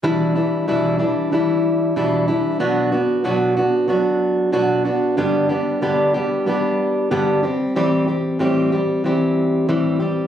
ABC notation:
X:1
M:4/4
L:1/8
Q:"Swing 16ths" 1/4=93
K:Em
V:1 name="Steel-string acoustic guitar"
[E,,B,,E,G,DE] [E,G,DE] [E,,B,,E,G,DE] [E,G,DE] [E,G,DE]2 [E,,B,,E,G,DE] [E,G,DE] | [B,,F,B,DF] [B,DF] [B,,F,B,DF] [B,DF] [F,B,DF]2 [B,,F,B,DF] [B,DF] | [G,,D,G,B,DG] [G,B,DG] [G,,D,G,B,DG] [G,B,DG] [G,B,DG]2 [G,,D,G,B,DG] [G,CG] | [A,,E,G,CG] [CG] [A,,E,G,CG] [G,CG] [E,G,CG]2 [A,,E,G,CG] [G,CG] |]